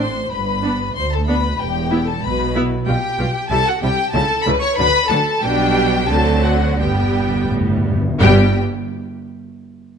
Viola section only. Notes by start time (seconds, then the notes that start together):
Already playing: C4
0.00 D4
0.63 B3 D4
1.28 B3 D4
1.91 B3 E4
2.55 B3 E4
2.86 G3 F4
3.18 G3 F4
3.51 G3 E4
3.83 G3 E4
4.14 G3 E4
4.46 G3 E4
4.78 F#3 D4
5.09 F#3 D4
5.42 G3 D4
6.09 F#3 C4
6.78 G3 B3
8.20 G3 B3